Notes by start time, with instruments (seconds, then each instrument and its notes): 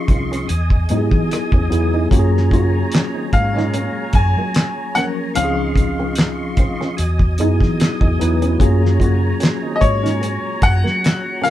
Already playing: tine electric piano F3 C4 C#4 D#4 G#4, tonewheel organ F4 D#5 C6 C#6
0.08 fingered electric bass C2, nylon-string guitar F4, kick, closed hi-hat
0.32 nylon-string guitar C#4, cross-stick, closed hi-hat
0.47 fingered electric bass E2, tonewheel organ G#4 D#5 G#5 D#6, closed hi-hat
0.70 kick
0.89 fingered electric bass G#2, tine electric piano F#3 B3 D#4 E4 G4, nylon-string guitar D#4, closed hi-hat
0.97 tine electric piano G#4
1.11 fingered electric bass E3, kick
1.31 cross-stick, closed hi-hat
1.52 fingered electric bass E2, nylon-string guitar C#4, kick
1.69 fingered electric bass E2, tine electric piano F#3 B3 D#4 E4 G#4, muted nylon-string guitar stroke, closed hi-hat
1.74 cross-stick
1.94 nylon-string guitar D#4
2.11 fingered electric bass F#2, tine electric piano F#3 A#3 C#4 F4 G4, tonewheel organ C#5 G#5 A#5, kick, closed hi-hat
2.19 tine electric piano G#4
2.37 snare
2.51 trombone section C#3 A#3 F#4, nylon-string guitar F4, kick, closed hi-hat
2.92 nylon-string guitar C#4, snare, clap, closed hi-hat
3.13 trombone section D#3 C4 D#4
3.33 fingered electric bass G#2, grand piano F5, muted nylon-string guitar stroke, kick, closed hi-hat
3.54 trombone section A#2 G#3 C#4, nylon-string guitar D#4
3.58 snare
3.74 nylon-string guitar C#4, closed hi-hat
4.13 fingered electric bass F#2, grand piano G#5, muted nylon-string guitar stroke, kick, closed hi-hat
4.37 fingered electric bass F#3, nylon-string guitar A#3
4.54 snare, clap, closed hi-hat
4.95 tine electric piano F3 F#3 A#3 C#4 A#4, nylon-string guitar C#4, grand piano F#5, snare, closed hi-hat
5.34 fingered electric bass C#2, tine electric piano F3 C4 C#4 D#4, nylon-string guitar C#4, tonewheel organ F4 D#5 C6 C#6, grand piano F5, closed hi-hat
5.38 tine electric piano G4
5.45 tine electric piano G#4
5.76 muted nylon-string guitar stroke, kick, closed hi-hat
6.00 nylon-string guitar C4
6.15 muted nylon-string guitar stroke, snare, clap, closed hi-hat
6.57 fingered electric bass C2, nylon-string guitar C4, kick, closed hi-hat
6.81 nylon-string guitar C#4, snare
6.97 fingered electric bass E2, tonewheel organ F#3 D#5 G#5 D#6, closed hi-hat
7.19 kick
7.38 fingered electric bass F#2, tine electric piano F#3 B3 D#4 E4 G#4, nylon-string guitar D#4, closed hi-hat
7.61 fingered electric bass E3, kick, snare
7.80 snare, clap, closed hi-hat
8.01 fingered electric bass E2, nylon-string guitar D#4, kick
8.19 fingered electric bass E2, tine electric piano F#3 B3 D#4 E4 B4, muted nylon-string guitar stroke, closed hi-hat
8.42 nylon-string guitar C#4, closed hi-hat
8.59 fingered electric bass F#2, tine electric piano F#3 A3 C#4 F4 G#4, tonewheel organ C#5 A#5, kick, closed hi-hat
8.66 tine electric piano A#3
8.86 snare
9.00 trombone section C#3 A#3 F#4, nylon-string guitar F4, kick, closed hi-hat
9.40 nylon-string guitar C#4, snare, clap, closed hi-hat
9.62 trombone section D#3 C4 D#4
9.76 grand piano D#5
9.81 fingered electric bass G#2, grand piano C#5, muted nylon-string guitar stroke, kick, closed hi-hat
10.03 trombone section A#2 G#3 C#4, nylon-string guitar D#4, snare, closed hi-hat
10.21 nylon-string guitar C#4, closed hi-hat
10.62 fingered electric bass F#2, grand piano F#5, muted nylon-string guitar stroke, kick, closed hi-hat
10.84 fingered electric bass F#3, nylon-string guitar A#3, snare
11.04 snare, clap, closed hi-hat
11.42 tine electric piano F#3 A#3 C#4 F4 A#4, nylon-string guitar C#4, grand piano F5, closed hi-hat
11.46 snare